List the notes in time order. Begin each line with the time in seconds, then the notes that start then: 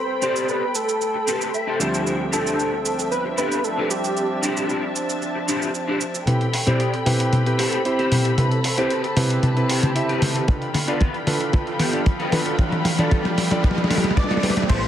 Already playing: A2 G3 C4 E4 A4 C5 G5 B5
0.21 C4 G4 A4 C5 D5, shaker
0.36 shaker
0.49 B4, shaker
0.75 A4, shaker
0.89 shaker
1.01 muted clean electric guitar stroke, shaker
1.14 muted clean electric guitar stroke
1.27 C4 G4 A4 B4 C5, shaker
1.41 shaker
1.54 E5, shaker
1.67 C4 G4 A4 C5
1.79 D2 F3 G3 A3 C4 D4 E4 F4 G4 C5 E5 A5, shaker
1.94 shaker
2.07 shaker
2.32 D4 E4 F4 G4 A4 C5, shaker
2.47 shaker
2.59 shaker
2.85 shaker
2.99 shaker
3.11 B4, muted clean electric guitar stroke, shaker
3.25 muted clean electric guitar stroke
3.37 D4 E4 F4 G4 A4 B4, shaker
3.52 shaker
3.64 A4, shaker
3.77 D4 E4 F4 G4 B4
3.90 G4 A5, shaker
4.04 muted clean electric guitar stroke, shaker
4.17 shaker
4.42 D4 E4 F4 G4 C5, shaker
4.57 shaker
4.69 shaker
4.96 shaker
5.09 shaker
5.22 muted clean electric guitar stroke, shaker
5.35 muted clean electric guitar stroke
5.48 D4 E4 F4 G4 C5, shaker
5.62 shaker
5.75 shaker
5.88 D4 E4 F4 G4 C5
6.01 shaker
6.14 muted clean electric guitar stroke, shaker
6.27 A1 C4 E4 G4 A4 B4 G5 B5, closed hi-hat, mid tom, riser
6.41 closed hi-hat
6.53 muted clean electric guitar stroke, open hi-hat
6.66 A1 C4 E4 G4 C5 D5, closed hi-hat, mid tom
6.80 closed hi-hat
6.94 closed hi-hat
7.06 A1 C4 E4 G4 B4, open hi-hat, mid tom
7.19 muted clean electric guitar stroke, closed hi-hat
7.33 closed hi-hat, mid tom
7.46 C4 E4 G4 B4, closed hi-hat
7.58 A1 C4 G4 A4, open hi-hat
7.73 closed hi-hat
7.85 C4 E4 G4 C5, closed hi-hat
7.98 A1 C4 G4 C5, closed hi-hat
8.12 open hi-hat, mid tom
8.25 closed hi-hat
8.38 A1 C4 E4 G4 B4 A5, closed hi-hat, mid tom
8.52 closed hi-hat
8.63 muted clean electric guitar stroke, open hi-hat
8.77 A1 C4 E4 G4 B4 C5, closed hi-hat
8.90 closed hi-hat
9.04 closed hi-hat
9.16 A1 C4 E4 G4 B4, open hi-hat, mid tom
9.30 muted clean electric guitar stroke, closed hi-hat
9.43 closed hi-hat, mid tom
9.56 C4 E4 G4 B4, closed hi-hat
9.69 A1 C4 G4 C5 G5, open hi-hat
9.83 closed hi-hat, mid tom
9.95 C4 E4 G4 E5, closed hi-hat
10.09 A1 C4 G4 B4, closed hi-hat
10.22 open hi-hat, mid tom
10.36 closed hi-hat
10.48 G1 D4 F4 A4 B4 F5 G5 B5, kick, closed hi-hat, mid tom
10.62 closed hi-hat
10.74 muted clean electric guitar stroke, open hi-hat, mid tom
10.87 G1 B3 D4 F4 A4 B4 D5, closed hi-hat
11.01 kick, closed hi-hat, mid tom
11.14 closed hi-hat
11.26 G1 D4 F4 A4 B4, open hi-hat, mid tom
11.40 muted clean electric guitar stroke, closed hi-hat
11.53 D4 F4 A4 B4, kick, closed hi-hat, mid tom
11.67 closed hi-hat
11.79 G1 B3 F4 G4, open hi-hat, mid tom
11.93 D4 F4 A4 D5, closed hi-hat
12.06 kick, closed hi-hat, mid tom
12.19 G1 B3 F4 B4, closed hi-hat
12.32 D4 F4 A4 B4, open hi-hat, mid tom
12.46 closed hi-hat
12.58 D4 F4 A4 B4, kick, closed hi-hat, mid tom
12.72 closed hi-hat, mid tom
12.84 muted clean electric guitar stroke, open hi-hat, mid tom
12.98 B3 D4 F4 A4 D5, closed hi-hat, mid tom
13.11 D4 F4 A4 B4, kick, closed hi-hat, mid tom
13.25 closed hi-hat, mid tom
13.38 G1, open hi-hat, mid tom
13.51 D4 F4 A4 D5, muted clean electric guitar stroke, closed hi-hat, mid tom
13.63 D4 F4 B4, kick, closed hi-hat, mid tom
13.71 mid tom
13.78 closed hi-hat, mid tom
13.84 mid tom
13.90 D2 B3 D4 F4 G4 A4 B4, open hi-hat, mid tom
13.97 mid tom
14.04 closed hi-hat, mid tom
14.11 mid tom
14.16 D4 F4 A4 B4 D5, kick, closed hi-hat, mid tom
14.24 mid tom
14.30 B3 F4 A4, closed hi-hat, mid tom
14.37 mid tom
14.42 C4 D4 E4 G4 A4 B4 C5 G5, open hi-hat, mid tom
14.50 mid tom
14.57 closed hi-hat, mid tom
14.63 mid tom
14.69 A1 G3 B3 C4 E4 G4 A4 B4 C5 G5 B5, kick, closed hi-hat, crash, shaker
14.83 closed hi-hat